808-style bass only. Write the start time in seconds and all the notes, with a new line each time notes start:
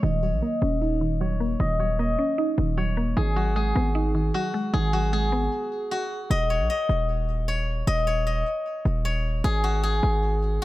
0.03 D#1
0.32 A#1
0.62 D#1
1.60 D#1
2.58 D#1
3.17 G#1
3.76 G#1
4.74 G#1
6.30 D#1
6.60 A#1
6.89 D#1
7.87 D#1
8.85 D#1
9.44 G#1
10.03 G#1